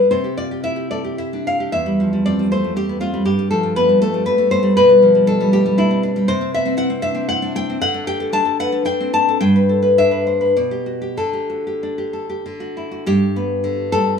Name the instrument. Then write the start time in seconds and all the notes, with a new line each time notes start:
nylon-string guitar
Already playing: D3
0.11 C3 C5
0.24 G4
0.37 F4 D5
0.51 G4
0.63 E4 E5
0.76 G4
0.91 A4 D5
1.04 G4
1.18 E4 E5
1.33 D4
1.47 E4 F5
1.60 G4
1.72 E2 E5
1.86 G3
2.00 F3
2.13 G3
2.26 C4 D5
2.39 G3
2.51 A3 C5
2.64 G3
2.76 C4 G4
2.89 B3
3.00 C4 F4
3.14 G3
3.25 G2 G4
3.39 G3
3.51 F3 A4
3.63 G3
3.76 B3 B4
3.89 G3
4.01 A3 A4
4.14 G3
4.26 B3 B4
4.38 A3
4.51 B3 C5
4.63 G3
4.77 B2 B4
4.89 G3
5.02 F3
5.15 G3
5.27 D4 A4
5.41 G3
5.53 A3 G4
5.66 G3
5.78 D4 E4
5.91 C4
6.03 D4
6.16 G3
6.28 C3 C5
6.41 C4
6.54 B3 E5
6.66 C4
6.77 E4 F#5
6.90 C4
7.02 D4 E5
7.15 C4
7.29 E4 F#5
7.42 D4
7.55 E4 G5
7.70 C4
7.81 D3 F#5
7.94 A4
8.07 G4 G5
8.20 A4
8.33 D4 A5
8.60 B4 F#5
8.72 A4
8.85 D4 G5
9.00 C4
9.13 D4 A5
9.29 A4
9.41 G2 G5
9.56 B4
9.69 A4
9.82 B4
9.98 D4 E5
10.11 B4
10.27 C5
10.41 B4
10.56 B2 D5
10.71 G4
10.86 F#4
11.02 G4
11.17 D3 A4
11.33 G4
11.50 F#4
11.67 G4
11.83 D4
11.98 G4
12.13 A4
12.29 G4
12.46 D3
12.60 F#4
12.77 E4
12.91 F#4
13.06 G2 G4
13.36 B3
13.64 D3
13.92 G3 A4